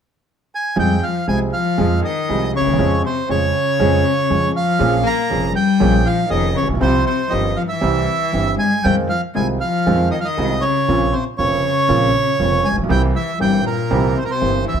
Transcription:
0.55 bandoneon G#5
0.76 grand piano F2 F3 G#3 C4 G#4, upright bass F2, cello G3, bandoneon G5
1.02 cello F3, bandoneon F5
1.27 grand piano C2 C3 F3 G#3 C4 G#4, upright bass C2, cello G#3, bandoneon G#5
1.51 cello F3, bandoneon F5
1.78 grand piano F2 F3 G#3 C4 G#4, upright bass F2
2.02 cello D#3, bandoneon D#5
2.29 grand piano C2 C3 F3 G#3 C4 G#4, upright bass C2
2.52 cello C#3, bandoneon C#5
2.60 upright bass D2, grand piano D2
2.67 grand piano D#2, upright bass D#2
2.73 upright bass E2, grand piano E2
2.79 upright bass F2, grand piano F2 F3 G#3 C#4 G#4
3.03 cello C3, bandoneon C5
3.29 grand piano F2 F3 G#3 C#4 G#4, upright bass F2, cello C#3, bandoneon C#5
3.80 grand piano F2 F3 G#3 C#4 G#4, upright bass F2
4.30 grand piano F2 F3 G#3 C#4 G#4, upright bass F2
4.53 cello F3, bandoneon F5
4.79 grand piano A#1 A#2 F3 A#3 C#4 G#4, upright bass A#1
5.03 cello A#3, bandoneon A#5
5.30 grand piano F1 F2 F3 A#3 C#4 G#4, upright bass F1
5.53 cello G3, bandoneon G5
5.80 grand piano A#1 A#2 F3 A#3 C#4 G#4, upright bass A#1
6.04 cello F3, bandoneon F5
6.29 grand piano F1 F2 F3 A#3 C#4 G#4, upright bass F1, cello D#3, bandoneon D#5
6.54 cello C#3, bandoneon C#5
6.62 upright bass A1, grand piano A1
6.68 grand piano A#1, upright bass A#1
6.74 grand piano B1, upright bass B1
6.78 grand piano C2 C3 F3 G3 C4 G4, upright bass C2, cello C3, bandoneon C5
7.04 cello C3, bandoneon C5
7.30 grand piano G1 G2 F3 G3 C4 G4, upright bass G1, cello D#3, bandoneon D#5
7.56 cello F3, bandoneon F5
7.68 cello E3, bandoneon E5
7.81 grand piano C2 C3 E3 G3 C4 G4, upright bass C2
8.32 grand piano G1 G2 E3 G3 C4 G4, upright bass G1
8.56 cello G#3, bandoneon G#5
8.82 grand piano F2 D#3 F3 G#3 C4 F4, upright bass F2, cello G3, bandoneon G5
9.09 cello F3, bandoneon F5
9.34 grand piano C2 C3 D#3 G#3 C4 F4, upright bass C2, cello G#3, bandoneon G#5
9.61 cello F3, bandoneon F5
9.86 upright bass F2, grand piano F2 D#3 F3 G#3 C4 F4
10.11 cello D#3, bandoneon D#5
10.20 cello F3, bandoneon F5
10.25 cello D#3, bandoneon D#5
10.37 grand piano C2 C3 D#3 G#3 C4 F4, upright bass C2
10.61 cello C#3, bandoneon C#5
10.88 upright bass A#1, grand piano A#1 A#2 C#3 A#3 C4 F4
11.11 cello C3, bandoneon C5
11.38 grand piano F1 F2 C#3 A#3 C4 F4, upright bass F1, cello C#3, bandoneon C#5
11.88 grand piano A#1 A#2 C#3 A#3 C4 F4, upright bass A#1
12.39 upright bass F1, grand piano F1 F2 C#3 A#3 C4 F4
12.63 cello G#3, bandoneon G#5
12.71 grand piano A1, upright bass A1
12.76 grand piano A#1, upright bass A#1
12.83 grand piano B1, upright bass B1
12.89 grand piano C2 C3 E3 A#3 C4 G4, upright bass C2, cello G3, bandoneon G5
13.14 cello E3, bandoneon E5
13.40 grand piano G1 G2 E3 A#3 C4 G4, upright bass G1, cello G3, bandoneon G5
13.64 cello A#2, bandoneon A#4
13.91 grand piano C2 C3 E3 A#3 C4 G4, upright bass C2
14.15 cello C3, bandoneon C5
14.22 cello A#2, bandoneon A#4
14.28 cello C3, bandoneon C5
14.41 grand piano G1 G2 E3 A#3 C4 G4, upright bass G1
14.66 cello E3, bandoneon E5
14.73 grand piano D2, upright bass D2

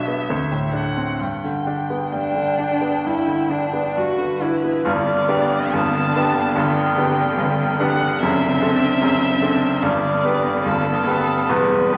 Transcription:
Already playing: grand piano B1 B2 D4, violin E5
0.08 grand piano B3
0.27 grand piano D2, cello A3, viola C4
0.52 grand piano A2
0.73 grand piano D4, violin F#5
0.97 grand piano C4
1.20 grand piano G2, violin G5
1.44 grand piano D3
1.67 grand piano D4
1.90 grand piano B3
2.13 grand piano G2, cello G3, viola D4
2.35 grand piano D3
2.59 grand piano D4
2.81 grand piano B3
3.05 grand piano G2, viola E4
3.27 grand piano D3
3.49 grand piano D4, viola D4
3.73 grand piano B3
3.96 grand piano G2, cello G3, viola F#4, violin B4
4.18 grand piano D3
4.42 grand piano D4, viola E4
4.63 grand piano B3
4.85 grand piano G1 G2, cello D3, viola B3, violin D5
5.28 grand piano B3 D4 G4
5.73 grand piano G1 G2, violin A5
6.16 grand piano B3 D4 G4
6.56 grand piano G1 G2, violin G5
6.98 grand piano B3 D4 G4
7.37 grand piano G1 G2
7.79 grand piano B3 D4 G4, violin F#5
8.19 grand piano F#1 F#2, viola C4, violin E5
8.62 grand piano C4 D4 A4
9.01 grand piano F#1 F#2
9.42 grand piano C4 D4 A4
9.82 grand piano G1 G2, cello D3, viola B3, violin D5
10.25 grand piano B3 G4 B4
10.65 grand piano G1 G2, violin A4
11.07 grand piano B3 G4 B4
11.49 grand piano E1 E2, cello G3, violin B4
11.93 grand piano B3 G4 B4

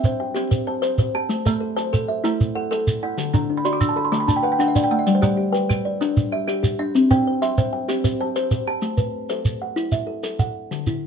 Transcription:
Already playing: kalimba C5 E5
0.04 kalimba C5, shekere
0.20 kalimba G5
0.34 kalimba C4 G4, shekere
0.51 kalimba C5, shekere
0.67 kalimba C5 A5
0.82 kalimba C5, shekere
0.98 kalimba C5, shekere
1.15 kalimba G4 A5
1.29 kalimba A3, shekere
1.45 kalimba A3 A4 E5, shekere
1.60 kalimba A4
1.76 kalimba C5 A5, shekere
1.93 kalimba A4, shekere
2.08 kalimba E5
2.24 kalimba A3 E4, shekere
2.41 shekere
2.55 kalimba A4 F#5
2.71 kalimba A4, shekere
2.87 shekere
3.03 kalimba E4 F#5
3.18 kalimba D3, shekere
3.34 kalimba D3 D4, shekere
3.50 kalimba D4
3.57 kalimba B5
3.65 kalimba F#4 D5 C6, shekere
3.73 kalimba D6
3.81 kalimba D4 E6, shekere
3.89 kalimba A5
3.96 kalimba A4 B5
4.05 kalimba C6
4.12 kalimba D3 A3 D6, shekere
4.20 kalimba B5
4.28 kalimba D4 A5, shekere
4.36 kalimba G5
4.43 kalimba B4 F#5
4.52 kalimba G5
4.59 kalimba D4 F#5, shekere
4.68 kalimba E5
4.75 kalimba D4 D5, shekere
4.84 kalimba G5
4.91 kalimba A3 F#5
4.99 kalimba E5
5.07 kalimba G3 D5, shekere
5.15 kalimba C5
5.22 kalimba G3 G4 D5, shekere
5.37 kalimba G4
5.52 kalimba B4 G5, shekere
5.69 kalimba G4, shekere
5.85 kalimba D5
6.01 kalimba G3 D4, shekere
6.17 shekere
6.32 kalimba G4 E5
6.47 kalimba G4, shekere
6.63 kalimba G4, shekere
6.79 kalimba D4 E5
6.95 kalimba C4, shekere
7.11 kalimba C4 C5 G5, shekere
7.27 kalimba C5
7.42 kalimba E5 C6, shekere
7.58 kalimba C5, shekere
7.73 kalimba G5
7.88 kalimba C4 G4, shekere
8.04 kalimba C5, shekere
8.21 kalimba C5 A5
8.36 kalimba C5, shekere
8.51 kalimba C5, shekere
8.67 kalimba G4 A5
8.82 kalimba A3, shekere
8.97 kalimba B4, shekere
9.29 kalimba A4 C5, shekere
9.45 shekere
9.62 kalimba F#5
9.76 kalimba E4, shekere
9.92 kalimba E5, shekere
10.07 kalimba A4
10.23 kalimba A4, shekere
10.39 kalimba F#5, shekere
10.71 kalimba D3, shekere
10.87 kalimba E4, shekere

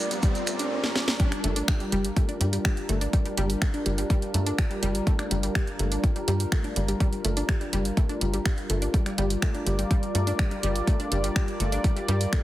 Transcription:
Already playing: analog synth pad G3 F4 A#4 D5, riser
0.11 synth pluck G3, closed hi-hat, shekere
0.22 synth pluck G3, kick, closed hi-hat, shekere
0.35 closed hi-hat, shekere
0.47 synth pluck A3, finger snap, closed hi-hat, shekere
0.59 synth pluck D4, closed hi-hat, shekere
0.84 snare
0.96 snare
1.08 snare
1.20 analog synth pad G3 D4 F4 A#4, synth pluck G3 G4, kick, closed hi-hat
1.32 finger snap, closed hi-hat
1.44 analog synth bass G1, synth pluck A3 A4, closed hi-hat
1.56 synth pluck D4 D5, closed hi-hat
1.68 synth pluck G3 G4, finger snap, kick, closed hi-hat
1.80 synth pluck G3 G4, closed hi-hat
1.92 analog synth bass G1, synth pluck G3 G4, closed hi-hat
2.05 closed hi-hat
2.17 synth pluck A3 A4, kick, closed hi-hat
2.29 synth pluck D4 D5, closed hi-hat
2.41 analog synth bass G2, synth pluck G3 G4, closed hi-hat
2.53 synth pluck G3 G4, closed hi-hat
2.65 synth pluck G3 G4, finger snap, kick, closed hi-hat
2.77 closed hi-hat
2.89 analog synth bass G1, synth pluck A3 A4, closed hi-hat
3.01 synth pluck D4 D5, closed hi-hat
3.13 synth pluck G3 G4, kick, closed hi-hat
3.25 synth pluck G3 G4, closed hi-hat
3.37 analog synth bass G1, synth pluck G3 G4, closed hi-hat
3.50 closed hi-hat
3.62 synth pluck A3 A4, finger snap, kick, closed hi-hat
3.74 synth pluck D4 D5, closed hi-hat
3.86 analog synth bass G1, synth pluck G3 G4, closed hi-hat
3.98 synth pluck G3 G4, closed hi-hat
4.10 synth pluck G3 G4, kick, closed hi-hat
4.22 closed hi-hat
4.34 analog synth bass G2, synth pluck A3 A4, closed hi-hat
4.46 synth pluck D4 D5, closed hi-hat
4.58 synth pluck G3 G4, finger snap, kick, closed hi-hat
4.71 synth pluck G3 G4, closed hi-hat
4.83 analog synth bass G1, synth pluck G3 G4, closed hi-hat
4.95 closed hi-hat
5.07 synth pluck A3 A4, kick, closed hi-hat
5.19 synth pluck D4 D5, finger snap, closed hi-hat
5.31 analog synth bass G1, synth pluck G3 G4, closed hi-hat
5.43 synth pluck G3 G4, closed hi-hat
5.55 synth pluck G3 G4, finger snap, kick, closed hi-hat
5.67 closed hi-hat
5.79 analog synth bass G1, synth pluck A3 A4, closed hi-hat
5.92 synth pluck D4 D5, closed hi-hat
6.04 synth pluck G3 G4, kick, closed hi-hat
6.16 synth pluck G3 G4, closed hi-hat
6.28 analog synth bass G2, synth pluck G3 G4, closed hi-hat
6.40 closed hi-hat
6.52 synth pluck A3 A4, finger snap, kick, closed hi-hat
6.64 synth pluck D4 D5, closed hi-hat
6.76 analog synth bass G1, synth pluck G3 G4, closed hi-hat
6.88 synth pluck G3 G4, closed hi-hat
7.00 synth pluck G3 G4, kick, closed hi-hat
7.13 closed hi-hat
7.25 analog synth bass G1, synth pluck A3 A4, closed hi-hat
7.37 synth pluck D4 D5, closed hi-hat
7.49 synth pluck G3 G4, finger snap, kick, closed hi-hat
7.61 synth pluck G3 G4, closed hi-hat
7.73 analog synth bass G1, synth pluck G3 G4, closed hi-hat
7.85 closed hi-hat
7.97 synth pluck A3 A4, kick, closed hi-hat
8.09 synth pluck D4 D5, closed hi-hat
8.21 analog synth bass G1, synth pluck G3 G4, closed hi-hat
8.34 synth pluck G3 G4, closed hi-hat
8.46 synth pluck G3 G4, finger snap, kick, closed hi-hat
8.58 closed hi-hat
8.70 analog synth bass G1, synth pluck A3 A4, closed hi-hat
8.82 synth pluck D4 D5, closed hi-hat
8.94 synth pluck G3 G4, analog synth pad G3 A#4 D5, kick, closed hi-hat
9.06 synth pluck G3 G4, finger snap, closed hi-hat
9.18 analog synth bass G1, synth pluck G3 G4, closed hi-hat
9.30 closed hi-hat
9.42 synth pluck A3 A4, finger snap, kick, closed hi-hat
9.54 synth pluck D4 D5, closed hi-hat
9.66 analog synth bass G1, synth pluck G3 G4, closed hi-hat
9.79 synth pluck G3 G4, closed hi-hat
9.91 synth pluck G3 G4, kick, closed hi-hat
10.03 closed hi-hat
10.15 analog synth bass G2, synth pluck A3 A4, closed hi-hat
10.27 synth pluck D4 D5, closed hi-hat
10.39 synth pluck G3 G4, finger snap, kick, closed hi-hat
10.51 synth pluck G3 G4, closed hi-hat
10.63 analog synth bass G1, synth pluck G3 G4, closed hi-hat
10.76 closed hi-hat
10.87 synth pluck A3 A4, kick, closed hi-hat
11.00 synth pluck D4 D5, closed hi-hat
11.12 analog synth bass G1, synth pluck G3 G4, closed hi-hat
11.24 synth pluck G3 G4, closed hi-hat
11.36 synth pluck G3 G4, finger snap, kick, closed hi-hat
11.48 closed hi-hat
11.60 analog synth bass G1, synth pluck A3 A4, closed hi-hat
11.72 synth pluck D4 D5, closed hi-hat
11.84 synth pluck G3 G4, kick, closed hi-hat
11.96 synth pluck G3 G4, closed hi-hat
12.08 analog synth bass G2, synth pluck G3 G4, closed hi-hat
12.21 closed hi-hat
12.33 synth pluck A3 A4, finger snap, kick, closed hi-hat

